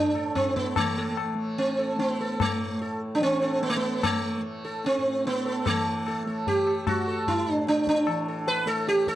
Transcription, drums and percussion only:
0.15 tabla na
0.36 tabla na, tabla ge
0.56 tabla ge
0.76 tabla na, tabla ge
1.17 tabla na
1.58 tabla te
1.99 tabla te
2.40 tabla na, tabla ge
3.22 tabla te
3.63 tabla te
4.03 tabla na, tabla ge
4.85 tabla te
5.25 tabla te
5.66 tabla na, tabla ge
6.07 tabla na
6.47 tabla tin, tabla ge
6.67 tabla na
6.87 tabla na, tabla ge
7.27 tabla tin, tabla ge
7.67 tabla te
7.77 tabla te
7.87 tabla ke
7.97 tabla te
8.07 tabla na
8.47 tabla tin
8.87 tabla te
8.97 tabla te
9.07 tabla ke

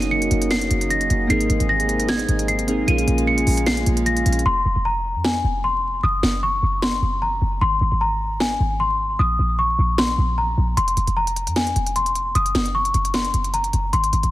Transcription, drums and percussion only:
0.02 closed hi-hat
0.22 closed hi-hat
0.31 closed hi-hat
0.42 closed hi-hat
0.51 snare, closed hi-hat
0.61 closed hi-hat
0.71 closed hi-hat
0.81 closed hi-hat
0.90 closed hi-hat
1.01 closed hi-hat
1.10 closed hi-hat
1.30 closed hi-hat
1.40 closed hi-hat
1.50 closed hi-hat
1.60 closed hi-hat
1.80 closed hi-hat
1.89 closed hi-hat
2.00 closed hi-hat
2.09 snare, closed hi-hat
2.19 closed hi-hat
2.29 closed hi-hat
2.39 closed hi-hat
2.48 closed hi-hat
2.59 closed hi-hat
2.68 closed hi-hat
2.88 closed hi-hat
2.98 closed hi-hat
3.08 closed hi-hat
3.18 closed hi-hat
3.38 closed hi-hat
3.47 open hi-hat
3.58 closed hi-hat
3.67 snare, closed hi-hat
3.77 closed hi-hat
3.86 closed hi-hat
3.97 closed hi-hat
4.06 closed hi-hat
4.17 closed hi-hat
4.26 closed hi-hat
4.33 closed hi-hat
4.39 closed hi-hat
5.25 snare
6.23 snare
6.82 snare
8.40 snare
9.98 snare
10.77 closed hi-hat
10.88 closed hi-hat
10.97 closed hi-hat
11.08 closed hi-hat
11.27 closed hi-hat
11.36 closed hi-hat
11.47 closed hi-hat
11.56 snare, closed hi-hat
11.67 closed hi-hat
11.76 closed hi-hat
11.86 closed hi-hat
11.96 closed hi-hat
12.06 closed hi-hat
12.15 closed hi-hat
12.35 closed hi-hat
12.46 closed hi-hat
12.55 snare, closed hi-hat
12.66 closed hi-hat
12.85 closed hi-hat
12.94 closed hi-hat
13.05 closed hi-hat
13.14 snare, closed hi-hat
13.25 closed hi-hat
13.34 closed hi-hat
13.44 closed hi-hat
13.54 closed hi-hat
13.64 closed hi-hat
13.73 closed hi-hat
13.93 closed hi-hat
14.04 closed hi-hat
14.13 closed hi-hat
14.23 closed hi-hat

